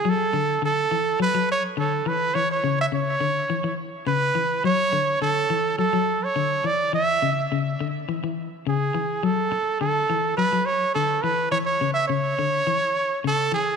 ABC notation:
X:1
M:4/4
L:1/16
Q:1/4=105
K:Dlyd
V:1 name="Trumpet"
A4 A4 B2 c2 A2 B2 | c c2 e c6 z2 B4 | c4 A4 A3 c3 d2 | e4 z8 G4 |
A4 A4 B2 c2 A2 B2 | c c2 e c8 A2 G2 |]
V:2 name="Clean electric guitar" clef=bass
F,2 D,2 D,2 E,2 F, F,2 z D,2 E,2 | E,2 C,2 C,2 D,2 E, E,2 z C,2 E,2 | F,2 D,2 D,2 E,2 F, F,2 z D,2 E,2 | E,2 C,2 C,2 D,2 E, E,2 z C,2 E,2 |
F,2 z2 D,2 E,2 F, F,2 z D,2 E,2 | E,2 C,2 C,2 D,2 E, z3 C,2 E,2 |]